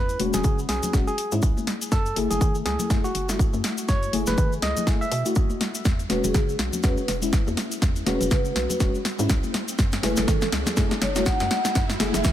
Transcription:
Already playing: E2 G#3 C#4 E4 B4
0.09 closed hi-hat, cabasa
0.19 E1 G#3 C#4 F#4, open hi-hat, high conga
0.34 E1 G#4, snare, closed hi-hat, low conga, cabasa
0.44 C#3, kick, closed hi-hat, cabasa
0.59 cabasa
0.69 B1 G#4, snare, open hi-hat
0.83 closed hi-hat, high conga, low conga, cabasa
0.93 E1 G#3 C#4 F#4, kick, snare, closed hi-hat, cabasa
1.07 G#4, cabasa
1.18 open hi-hat
1.32 G#2 G#3 C#4 E4, closed hi-hat, cabasa
1.42 C#2, kick, closed hi-hat, cabasa
1.57 high conga, cabasa
1.67 snare, open hi-hat
1.81 closed hi-hat, cabasa
1.92 F#2 A4, kick, snare, closed hi-hat, cabasa
2.06 closed hi-hat, cabasa
2.16 F#1 A3 E4 G#4, open hi-hat, high conga
2.30 F#1 G#4, closed hi-hat, low conga, cabasa
2.41 D#3, kick, closed hi-hat, cabasa
2.55 cabasa
2.65 C#2 G#4, snare, open hi-hat
2.79 closed hi-hat, high conga, low conga, cabasa
2.90 F#2 A3 E4 G#4, kick, snare, closed hi-hat, cabasa
3.04 F#4, cabasa
3.15 F#1, open hi-hat
3.28 A3 E4 F#4, snare, closed hi-hat, cabasa
3.39 kick, closed hi-hat, cabasa
3.53 F#2, high conga, cabasa
3.64 snare, open hi-hat
3.78 closed hi-hat, cabasa
3.88 F#2 C#5, kick, snare, closed hi-hat, cabasa
4.03 closed hi-hat, cabasa
4.13 F#1 A3 E4 G#4, open hi-hat, high conga
4.27 F#1 B4, snare, closed hi-hat, low conga, cabasa
4.38 D#3, kick, closed hi-hat, cabasa
4.53 cabasa
4.62 C#2 D#5, snare, open hi-hat
4.77 closed hi-hat, high conga, low conga, cabasa
4.87 A3 E4 G#4, kick, snare, closed hi-hat, cabasa
5.01 E5, cabasa
5.12 B2, open hi-hat
5.25 A3 E4 F#4, closed hi-hat, cabasa
5.35 kick, closed hi-hat, cabasa
5.50 high conga, cabasa
5.61 snare, open hi-hat
5.75 closed hi-hat, cabasa
5.85 E2, kick, snare, closed hi-hat, riser, cabasa
5.99 closed hi-hat, cabasa
6.09 E1 G#3 C#4 F#4 B4, snare, open hi-hat, high bongo, high conga
6.24 E1 G#4, closed hi-hat, low conga, cabasa
6.34 C#3 G#4, kick, snare, closed hi-hat, cabasa
6.49 cabasa
6.59 B1, snare, open hi-hat, high bongo
6.73 closed hi-hat, high conga, low conga, cabasa
6.83 E2 G#3 C#4 F#4 B4, kick, snare, closed hi-hat, cabasa
6.97 B4, high bongo, cabasa
7.08 E1, snare, open hi-hat
7.22 G#3 C#4 E4, closed hi-hat, cabasa
7.33 kick, snare, closed hi-hat, cabasa
7.47 E2, high bongo, high conga, cabasa
7.57 snare, open hi-hat
7.72 closed hi-hat, cabasa
7.81 E2, kick, snare, closed hi-hat, high bongo, cabasa
7.96 closed hi-hat, cabasa
8.06 E1 G#3 C#4 F#4 B4, snare, open hi-hat, high conga
8.21 E1 B4, closed hi-hat, low conga, cabasa
8.31 C#3, kick, snare, closed hi-hat, high bongo, cabasa
8.45 cabasa
8.56 B1, snare, open hi-hat
8.70 closed hi-hat, high bongo, high conga, low conga, cabasa
8.80 E1 G#3 C#4 F#4, kick, snare, closed hi-hat, cabasa
8.95 cabasa
9.05 snare, open hi-hat
9.19 G#2 G#3 C#4 E4, closed hi-hat, high bongo, cabasa
9.29 C#2, kick, snare, closed hi-hat, cabasa
9.43 high conga, cabasa
9.54 snare, open hi-hat, high bongo
9.68 closed hi-hat, cabasa
9.78 F#2, kick, snare, closed hi-hat, cabasa
9.92 snare, closed hi-hat, cabasa
10.03 F#1 A3 E4 G#4 B4, snare, open hi-hat, high bongo, high conga
10.16 F#1 A4, snare, closed hi-hat, low conga, cabasa
10.28 D#3 A4, kick, snare, closed hi-hat, cabasa
10.41 snare, high bongo, cabasa
10.52 C#2, snare, open hi-hat
10.66 snare, closed hi-hat, high conga, low conga, cabasa
10.77 F#2 A3 E4 G#4, kick, snare, closed hi-hat, cabasa
10.91 snare, high bongo, cabasa
11.02 F#1 C#5, snare, open hi-hat
11.15 A3 E4 F#4, snare, closed hi-hat, cabasa
11.26 F#5, kick, snare, closed hi-hat, high bongo, cabasa
11.40 F#2, snare, high conga, cabasa
11.51 snare, open hi-hat
11.65 snare, closed hi-hat, cabasa
11.75 F#2, kick, snare, closed hi-hat, high bongo, cabasa
11.90 snare, closed hi-hat, cabasa
11.99 F#1 A3 E4 G#4, snare, open hi-hat, high conga
12.14 F#1 E5, snare, closed hi-hat, high bongo, low conga, cabasa
12.24 D#3 E5, kick, snare, closed hi-hat, cabasa

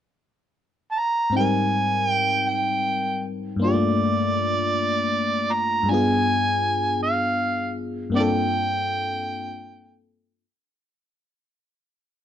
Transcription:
0.92 A5
0.99 A#5
1.30 G#2 C4
1.35 G3 D#4 G#5
1.41 A#4
2.09 G5
2.49 G5
3.56 G2 A#3
3.62 D4 F4 D5
3.67 G4
3.74 A3
5.53 A#5
5.83 G2 G#3
5.89 B3 D4 F4 G#5
5.94 G#4
7.03 F5
8.10 G2 A#3
8.14 C4 D4 D5 G5
8.19 F4 A4

